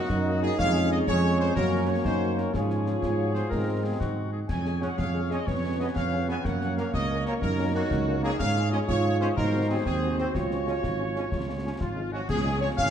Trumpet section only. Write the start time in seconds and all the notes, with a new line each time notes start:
Already playing: F#4
0.42 G#4
0.59 F5
0.91 D#5
1.07 C#5
1.39 C5
1.55 A#4
1.88 C#5
2.05 C5
2.38 A#4
2.54 G#4
4.49 G#5
4.81 F#5
4.97 F5
5.30 D#5
5.47 C#5
5.80 D#5
5.95 F5
6.29 G#5
6.44 F#5
6.77 F5
6.93 D#5
7.25 C#5
7.42 A#4
7.75 F#4
8.23 G#4
8.40 F5
8.71 D#5
8.88 C#5
9.20 C5
9.36 A#4
9.69 G#4
9.86 G#4
10.18 C5
10.35 C#5
11.80 F4
12.13 F#4
12.29 G#4
12.61 C#5
12.78 F5